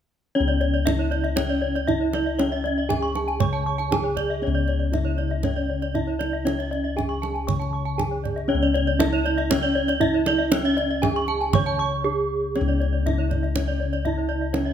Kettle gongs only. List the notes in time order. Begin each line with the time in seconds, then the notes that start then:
0.35 C#4
0.40 C#2
0.87 D4
1.89 D4
2.40 C#4
2.89 D4
3.41 C#3
3.91 D4
4.42 C#4
4.47 C#2
4.93 D4
5.94 D4
6.46 C#4
6.97 D4
7.48 C#3
8.00 D4
8.50 C#4
8.55 C#2
9.01 D4
10.01 D4
10.53 C#4
11.04 D4
11.54 C#3
12.05 D4
12.56 C#4
12.61 C#2
13.08 D4
14.05 D4
14.54 C#4